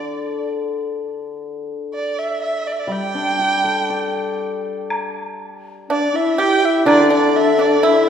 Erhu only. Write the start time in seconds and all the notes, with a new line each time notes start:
Already playing: D5
1.94 D5
2.19 E5
2.43 E5
2.67 D5
2.72 E5
2.79 D5
2.92 G5
5.92 D5
6.16 E5
6.40 G5
6.65 E5
6.89 D5
7.13 D5
7.37 E5
7.60 D5
7.83 E5